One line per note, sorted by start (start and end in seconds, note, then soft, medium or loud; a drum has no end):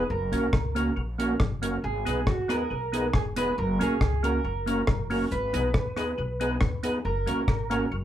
0.00 0.10 B4 medium
0.10 0.29 F#1 loud
0.10 0.93 A#4 medium
0.32 0.50 A#1 medium
0.32 0.48 A#3 medium
0.32 0.47 A#3 medium
0.32 0.48 C#4 medium
0.32 0.47 C#4 medium
0.32 0.47 F#4 medium
0.32 0.48 F#4 medium
0.32 0.47 A#4 loud
0.32 0.49 A#4 loud
0.32 closed hi-hat medium
0.53 0.90 C#2 medium
0.53 kick loud
0.53 cross-stick loud
0.75 0.91 A#3 medium
0.75 0.90 A#3 medium
0.75 0.90 C#4 medium
0.75 0.91 C#4 medium
0.75 0.91 F#4 medium
0.75 0.92 F#4 medium
0.75 0.91 A#4 loud
0.75 0.92 A#4 loud
0.75 closed hi-hat medium
0.96 1.34 A#1 medium
0.96 1.01 F#4 soft
0.96 1.01 A#4 soft
1.18 1.34 A#3 medium
1.18 1.33 A#3 medium
1.18 1.34 C#4 medium
1.18 1.35 C#4 medium
1.18 1.34 F#4 medium
1.18 1.35 F#4 medium
1.18 1.34 A#4 loud
1.18 1.35 A#4 loud
1.18 closed hi-hat medium
1.40 1.77 F#1 loud
1.40 kick loud
1.40 cross-stick loud
1.62 1.78 A#3 medium
1.62 1.77 A#3 medium
1.62 1.78 C#4 medium
1.62 1.77 C#4 medium
1.62 1.77 F#4 medium
1.62 1.78 F#4 medium
1.62 1.77 A#4 medium
1.62 1.79 A#4 medium
1.62 closed hi-hat medium
1.84 2.03 G#1 loud
1.84 2.24 G#4 medium
2.05 2.24 B1 medium
2.05 2.21 B3 medium
2.05 2.20 B3 medium
2.05 2.20 D#4 medium
2.05 2.22 D#4 medium
2.05 2.21 G#4 medium
2.05 2.22 G#4 medium
2.05 2.21 B4 loud
2.05 2.22 B4 medium
2.05 closed hi-hat medium
2.27 2.64 D#2 medium
2.27 2.51 F#4 medium
2.27 kick loud
2.27 cross-stick loud
2.48 2.64 B3 medium
2.48 2.65 B3 medium
2.48 2.64 D#4 medium
2.48 2.65 D#4 medium
2.48 2.64 G#4 medium
2.48 2.66 G#4 medium
2.48 3.14 A#4 loud
2.48 2.64 B4 loud
2.48 2.66 B4 medium
2.48 cross-stick medium
2.48 closed hi-hat medium
2.70 3.08 B1 medium
2.70 2.75 G#4 soft
2.70 2.75 B4 soft
2.92 3.07 B3 medium
2.92 3.09 B3 medium
2.92 3.07 D#4 medium
2.92 3.09 D#4 medium
2.92 3.08 G#4 medium
2.92 3.09 G#4 medium
2.92 3.08 B4 loud
2.92 3.10 B4 medium
2.92 closed hi-hat medium
3.13 3.51 E1 medium
3.13 3.21 G#4 medium
3.13 kick loud
3.13 cross-stick loud
3.36 3.52 B3 medium
3.36 3.51 B3 loud
3.36 3.51 D#4 medium
3.36 3.52 D#4 medium
3.36 3.51 G#4 medium
3.36 3.53 G#4 medium
3.36 3.52 B4 loud
3.36 3.58 B4 loud
3.36 3.53 B4 medium
3.36 closed hi-hat medium
3.58 3.77 F#1 loud
3.58 3.79 A#4 loud
3.79 3.98 A#1 loud
3.79 3.94 A#3 medium
3.79 3.95 A#3 medium
3.79 3.94 C#4 medium
3.79 3.96 C#4 medium
3.79 3.95 F#4 medium
3.79 3.96 F#4 medium
3.79 4.21 G#4 medium
3.79 3.95 A#4 loud
3.79 3.96 A#4 loud
3.79 closed hi-hat medium
4.01 4.38 C#2 medium
4.01 kick loud
4.01 cross-stick loud
4.23 4.38 A#3 medium
4.23 4.39 A#3 medium
4.23 4.38 C#4 medium
4.23 4.39 C#4 medium
4.23 4.38 F#4 medium
4.23 4.39 F#4 medium
4.23 4.38 A#4 loud
4.23 4.40 A#4 medium
4.23 5.07 A#4 medium
4.23 closed hi-hat medium
4.44 4.81 F#1 loud
4.44 4.49 F#4 soft
4.44 4.49 A#4 soft
4.66 4.82 A#3 medium
4.66 4.81 A#3 loud
4.66 4.82 C#4 medium
4.66 4.81 C#4 medium
4.66 4.83 F#4 medium
4.66 4.82 F#4 medium
4.66 4.82 A#4 loud
4.66 4.83 A#4 medium
4.66 closed hi-hat medium
4.87 5.25 F#1 medium
4.87 kick loud
4.87 cross-stick loud
5.10 5.25 A#3 medium
5.10 5.26 A#3 medium
5.10 5.25 C#4 medium
5.10 5.26 C#4 medium
5.10 5.25 F#4 medium
5.10 5.26 F#4 medium
5.10 5.25 A#4 loud
5.10 5.27 A#4 medium
5.10 open hi-hat medium
5.31 5.51 G#1 loud
5.31 7.05 B4 loud
5.31 hi-hat pedal medium
5.53 5.72 B1 loud
5.53 5.69 B3 medium
5.53 5.68 B3 medium
5.53 5.69 D#4 medium
5.53 5.68 D#4 medium
5.53 5.68 G#4 medium
5.53 5.69 G#4 medium
5.53 5.69 B4 medium
5.53 5.70 B4 medium
5.53 closed hi-hat medium
5.74 6.11 D#2 medium
5.74 kick loud
5.74 cross-stick loud
5.96 6.11 B3 medium
5.96 6.12 B3 medium
5.96 6.12 D#4 medium
5.96 6.13 D#4 medium
5.96 6.12 G#4 medium
5.96 6.13 G#4 medium
5.96 6.12 B4 loud
5.96 6.13 B4 medium
5.96 cross-stick medium
5.96 closed hi-hat medium
6.18 6.55 B1 loud
6.18 6.22 G#4 soft
6.18 6.22 B4 soft
6.40 6.55 B3 loud
6.40 6.56 B3 medium
6.40 6.55 D#4 medium
6.40 6.56 D#4 medium
6.40 6.55 G#4 medium
6.40 6.57 G#4 medium
6.40 6.55 B4 loud
6.40 6.57 B4 medium
6.40 closed hi-hat medium
6.61 6.98 D#2 medium
6.61 kick loud
6.61 cross-stick loud
6.83 6.99 B3 medium
6.83 6.98 B3 medium
6.83 6.98 D#4 medium
6.83 6.99 D#4 medium
6.83 6.99 G#4 medium
6.83 7.00 G#4 medium
6.83 6.99 B4 loud
6.83 7.00 B4 medium
6.83 closed hi-hat medium
7.05 7.24 F#1 loud
7.05 7.88 A#4 medium
7.26 7.45 A#1 medium
7.26 7.41 A#3 medium
7.26 7.43 A#3 medium
7.26 7.42 C#4 medium
7.26 7.43 C#4 medium
7.26 7.42 F#4 medium
7.26 7.43 F#4 medium
7.26 7.42 A#4 medium
7.26 7.44 A#4 medium
7.26 closed hi-hat medium
7.48 7.85 G#1 medium
7.48 kick loud
7.48 cross-stick loud
7.70 7.85 A#3 medium
7.70 7.86 A#3 medium
7.70 7.85 C#4 medium
7.70 7.87 C#4 medium
7.70 7.85 F#4 medium
7.70 7.87 F#4 medium
7.70 7.86 A#4 loud
7.70 7.87 A#4 medium
7.70 closed hi-hat medium
7.92 8.04 F#1 loud
7.92 7.96 F#4 soft
7.92 7.96 A#4 soft